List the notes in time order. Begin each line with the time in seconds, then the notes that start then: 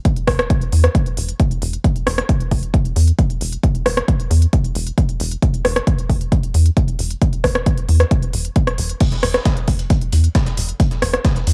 0.05 kick, closed hi-hat
0.16 closed hi-hat
0.27 E1, kick, cross-stick, open hi-hat
0.39 cross-stick, closed hi-hat
0.50 kick, closed hi-hat
0.61 closed hi-hat
0.72 E2, open hi-hat
0.84 cross-stick, closed hi-hat
0.95 kick, closed hi-hat
1.06 closed hi-hat
1.17 E1, open hi-hat
1.28 closed hi-hat
1.39 kick, closed hi-hat
1.51 closed hi-hat
1.62 E1, open hi-hat
1.73 closed hi-hat
1.84 kick, closed hi-hat
1.96 closed hi-hat
2.07 E1, cross-stick, open hi-hat
2.18 cross-stick, closed hi-hat
2.29 kick, closed hi-hat
2.40 closed hi-hat
2.51 E1, kick, open hi-hat
2.63 closed hi-hat
2.74 kick, closed hi-hat
2.85 closed hi-hat
2.96 E2, open hi-hat
3.08 closed hi-hat
3.19 kick, closed hi-hat
3.30 closed hi-hat
3.41 E1, open hi-hat
3.52 closed hi-hat
3.63 kick, closed hi-hat
3.75 closed hi-hat
3.86 E1, cross-stick, open hi-hat
3.97 cross-stick, closed hi-hat
4.08 kick, closed hi-hat
4.20 closed hi-hat
4.30 E2, open hi-hat
4.42 closed hi-hat
4.53 kick, closed hi-hat
4.64 closed hi-hat
4.75 E1, open hi-hat
4.87 closed hi-hat
4.98 kick, closed hi-hat
5.09 closed hi-hat
5.20 E1, open hi-hat
5.31 closed hi-hat
5.42 kick, closed hi-hat
5.54 closed hi-hat
5.65 E1, cross-stick, open hi-hat
5.76 cross-stick, closed hi-hat
5.87 kick, closed hi-hat
5.99 closed hi-hat
6.10 E1, kick, open hi-hat
6.21 closed hi-hat
6.32 kick, closed hi-hat
6.43 closed hi-hat
6.54 E2, open hi-hat
6.66 closed hi-hat
6.77 kick, closed hi-hat
6.88 closed hi-hat
6.99 E1, open hi-hat
7.11 closed hi-hat
7.22 kick, closed hi-hat
7.33 closed hi-hat
7.44 E1, kick, cross-stick, open hi-hat
7.55 cross-stick, closed hi-hat
7.66 kick, closed hi-hat
7.78 closed hi-hat
7.89 E2, open hi-hat
8.00 cross-stick, closed hi-hat
8.11 kick, closed hi-hat
8.23 closed hi-hat
8.34 E1, open hi-hat
8.45 closed hi-hat
8.56 kick, closed hi-hat
8.67 cross-stick, closed hi-hat
8.78 E1, open hi-hat
8.90 closed hi-hat
9.01 kick, closed hi-hat, crash
9.12 snare, closed hi-hat
9.23 E1, cross-stick, closed hi-hat, open hi-hat
9.34 cross-stick, snare, closed hi-hat
9.45 kick, snare, closed hi-hat
9.57 closed hi-hat
9.68 E1, kick, closed hi-hat, open hi-hat
9.79 closed hi-hat
9.90 kick, closed hi-hat
10.02 closed hi-hat
10.12 E2, closed hi-hat, open hi-hat
10.24 closed hi-hat
10.35 kick, snare, closed hi-hat
10.46 snare, closed hi-hat
10.57 E1, closed hi-hat, open hi-hat
10.69 closed hi-hat
10.80 kick, closed hi-hat
10.91 snare, closed hi-hat
11.02 E1, cross-stick, closed hi-hat, open hi-hat
11.13 cross-stick, closed hi-hat
11.24 kick, snare, closed hi-hat
11.36 snare, closed hi-hat
11.47 E2, closed hi-hat, open hi-hat